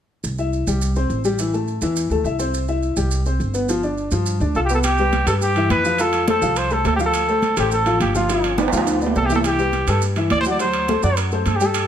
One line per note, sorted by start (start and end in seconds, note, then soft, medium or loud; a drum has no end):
0.24 0.64 C2 medium
0.24 maracas medium
0.38 0.62 E4 medium
0.38 0.62 E5 medium
0.38 maracas soft
0.53 maracas soft
0.67 1.07 C2 medium
0.67 0.91 G3 medium
0.67 0.91 G4 medium
0.67 maracas medium
0.82 maracas medium
0.96 1.20 C4 medium
0.96 1.20 C5 medium
0.96 maracas soft
1.10 1.76 A1 medium
1.10 maracas soft
1.25 1.36 G3 medium
1.25 1.36 G4 medium
1.25 maracas medium
1.39 1.51 E3 medium
1.39 1.51 E4 medium
1.39 maracas medium
1.54 1.77 A3 medium
1.54 1.77 A4 medium
1.54 maracas soft
1.67 maracas soft
1.81 2.08 E2 medium
1.81 2.06 E3 medium
1.81 2.06 E4 medium
1.81 maracas medium
1.96 maracas medium
2.10 2.24 D2 medium
2.10 2.23 A3 medium
2.10 2.23 A4 medium
2.10 maracas soft
2.24 2.91 C2 medium
2.24 2.37 E4 medium
2.24 2.37 E5 medium
2.24 maracas soft
2.39 2.63 C4 medium
2.39 2.63 C5 medium
2.39 maracas medium
2.54 maracas medium
2.68 2.92 E4 medium
2.68 2.92 E5 medium
2.68 maracas soft
2.82 maracas soft
2.96 3.37 C2 medium
2.96 3.20 G3 medium
2.96 3.20 G4 medium
2.96 maracas medium
3.11 maracas medium
3.26 3.49 C4 medium
3.26 3.50 C5 medium
3.26 maracas soft
3.40 4.06 G1 medium
3.40 maracas soft
3.54 3.66 B3 medium
3.54 3.66 B4 medium
3.54 maracas medium
3.69 3.81 F3 medium
3.69 3.81 F4 medium
3.69 maracas medium
3.83 4.07 D4 medium
3.83 4.07 D5 medium
3.83 maracas soft
3.97 maracas soft
4.11 4.38 G2 medium
4.11 4.36 F3 medium
4.11 4.36 F4 medium
4.11 maracas medium
4.26 maracas medium
4.40 4.54 D2 medium
4.40 4.53 D4 medium
4.40 4.53 D5 medium
4.40 maracas soft
4.55 5.22 C2 medium
4.55 4.67 F4 medium
4.55 4.60 A4 medium
4.55 4.67 F5 medium
4.55 maracas soft
4.65 4.74 G4 medium
4.69 4.82 B3 medium
4.69 4.82 B4 medium
4.69 maracas medium
4.75 4.79 A4 medium
4.83 5.24 G4 medium
4.83 high conga soft
4.83 high timbale medium
4.83 maracas medium
4.98 5.22 G3 medium
4.98 5.23 G4 medium
4.98 5.23 B4 medium
4.98 high conga soft
4.98 maracas soft
5.12 high conga medium
5.12 high timbale medium
5.12 maracas soft
5.26 5.67 G2 medium
5.26 5.51 G3 medium
5.26 5.51 G4 medium
5.26 5.34 A4 medium
5.26 5.51 B4 medium
5.26 high conga soft
5.26 high timbale medium
5.26 maracas medium
5.41 5.69 G4 medium
5.41 high conga soft
5.41 maracas medium
5.56 5.80 E3 medium
5.56 5.80 E4 medium
5.56 5.80 E5 medium
5.56 high conga soft
5.56 high timbale medium
5.56 maracas soft
5.70 6.36 F2 medium
5.70 6.02 B4 medium
5.70 high conga medium
5.70 high timbale medium
5.70 maracas soft
5.84 5.96 F3 medium
5.84 5.96 F4 medium
5.84 5.97 F5 medium
5.84 maracas medium
5.98 6.23 F3 medium
5.98 6.23 F4 medium
5.98 6.29 A4 medium
5.98 6.23 F5 medium
5.98 high conga soft
5.98 high timbale medium
5.98 maracas medium
6.13 high conga soft
6.13 high timbale medium
6.13 maracas soft
6.27 6.40 A3 medium
6.27 6.40 A4 medium
6.27 6.59 A4 medium
6.27 6.40 C5 medium
6.27 high conga medium
6.27 high timbale medium
6.27 maracas soft
6.42 6.82 C2 medium
6.42 6.66 F3 medium
6.42 6.66 F4 medium
6.42 6.66 F5 medium
6.42 high conga soft
6.42 maracas medium
6.56 6.74 C5 medium
6.56 high conga soft
6.56 high timbale medium
6.56 maracas medium
6.71 6.94 A3 medium
6.71 6.95 A4 medium
6.71 6.86 A4 medium
6.71 6.95 C5 medium
6.71 high conga soft
6.71 maracas soft
6.85 7.52 D2 medium
6.85 6.91 A4 medium
6.85 high conga medium
6.85 high timbale medium
6.85 low timbale medium
6.85 maracas soft
6.96 7.23 F3 medium
6.96 7.23 F4 medium
6.96 7.00 G4 medium
6.96 high conga medium
6.96 maracas medium
7.00 7.24 F5 medium
7.06 7.54 A4 medium
7.14 high conga soft
7.14 high timbale medium
7.14 maracas medium
7.28 7.52 A3 medium
7.28 7.52 A4 medium
7.28 7.52 C5 medium
7.28 high conga soft
7.28 maracas soft
7.42 high conga medium
7.42 high timbale medium
7.42 maracas soft
7.57 7.97 A1 medium
7.57 7.81 A3 medium
7.57 7.72 G4 medium
7.57 7.81 A4 medium
7.57 7.81 C5 medium
7.57 high conga soft
7.57 high timbale medium
7.57 maracas medium
7.72 7.99 A4 medium
7.72 high conga soft
7.72 maracas medium
7.86 8.10 F3 medium
7.86 8.10 F4 medium
7.86 8.10 F5 medium
7.86 high conga soft
7.86 high timbale medium
7.86 maracas soft
8.00 8.67 G1 medium
8.00 8.15 G4 medium
8.00 high conga medium
8.00 high timbale medium
8.00 maracas soft
8.15 8.27 F3 medium
8.15 8.27 F4 medium
8.15 8.56 F4 medium
8.15 8.27 F5 medium
8.15 high conga medium
8.15 maracas medium
8.29 8.53 F3 medium
8.29 8.53 F4 medium
8.29 8.53 F5 medium
8.29 high conga soft
8.29 high timbale medium
8.29 maracas medium
8.44 high conga soft
8.44 high timbale medium
8.44 maracas soft
8.58 8.70 B3 medium
8.58 8.70 B4 medium
8.58 8.70 D5 medium
8.58 high conga medium
8.58 high timbale medium
8.58 maracas soft
8.68 high timbale loud
8.72 9.13 D2 medium
8.72 8.96 F3 medium
8.72 8.96 F4 medium
8.72 8.96 F5 medium
8.72 high conga soft
8.72 maracas medium
8.77 high timbale medium
8.86 high conga soft
8.86 high timbale medium
8.86 maracas medium
9.01 9.25 B3 medium
9.01 9.25 B4 medium
9.01 9.25 D5 medium
9.01 high conga soft
9.01 maracas soft
9.06 low timbale medium
9.15 9.82 C2 medium
9.15 9.28 A4 medium
9.15 high conga medium
9.15 low timbale medium
9.15 maracas soft
9.26 9.54 E3 medium
9.26 9.35 G4 loud
9.26 high conga medium
9.26 maracas medium
9.30 9.54 E4 medium
9.30 9.54 E5 medium
9.35 9.40 A4 medium
9.35 low timbale medium
9.44 9.91 G4 medium
9.44 high conga soft
9.44 high timbale medium
9.44 maracas medium
9.58 9.82 G3 medium
9.58 9.83 G4 medium
9.58 9.83 B4 medium
9.58 high conga soft
9.58 maracas soft
9.73 high conga medium
9.73 high timbale medium
9.73 maracas soft
9.87 10.28 G2 medium
9.87 10.11 G3 medium
9.87 10.11 G4 medium
9.87 10.03 A4 medium
9.87 10.12 B4 medium
9.87 high conga soft
9.87 high timbale medium
9.87 maracas medium
10.02 high conga soft
10.02 maracas medium
10.16 10.40 E3 medium
10.16 10.40 E4 medium
10.16 10.40 E5 medium
10.16 high conga soft
10.16 high timbale medium
10.16 maracas soft
10.30 10.98 D2 medium
10.30 10.36 D5 loud
10.30 high conga medium
10.30 high timbale medium
10.30 low timbale medium
10.30 maracas soft
10.41 10.45 C5 loud
10.45 10.57 F#3 medium
10.45 10.57 F#4 medium
10.45 10.58 F#5 medium
10.45 maracas medium
10.51 10.59 D5 medium
10.59 10.83 F#3 medium
10.59 10.83 F#4 medium
10.59 11.00 C5 medium
10.59 10.84 F#5 medium
10.59 high conga soft
10.59 high timbale medium
10.59 maracas medium
10.73 high conga soft
10.73 high timbale medium
10.73 maracas soft
10.88 11.00 A3 medium
10.88 11.01 A4 medium
10.88 11.01 C5 medium
10.88 high conga medium
10.88 high timbale medium
10.88 maracas soft
11.03 11.43 F#2 medium
11.03 11.26 F#3 medium
11.03 11.27 F#4 medium
11.03 11.17 D5 medium
11.03 11.27 F#5 medium
11.03 high conga soft
11.03 maracas medium
11.17 high conga soft
11.17 high timbale medium
11.17 maracas medium
11.32 11.55 A3 medium
11.32 11.56 A4 medium
11.32 11.56 C5 medium
11.32 high conga soft
11.32 maracas soft
11.46 11.87 G2 medium
11.46 11.58 A4 medium
11.46 high conga medium
11.46 high timbale medium
11.46 maracas soft
11.56 11.68 G4 medium
11.60 11.84 G3 medium
11.60 11.84 G4 medium
11.60 11.85 G5 medium
11.60 maracas medium
11.66 11.87 A4 medium
11.74 high conga soft
11.74 high timbale loud
11.74 maracas medium